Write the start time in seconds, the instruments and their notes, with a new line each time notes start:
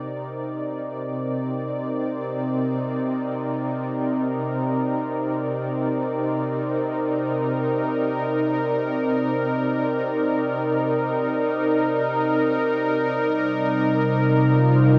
Already playing: analog synth pad C3 C4 D#4 A#4 D5
13.17 synth drone C3 G3
14.45 analog synth pad F4
14.75 analog synth pad C5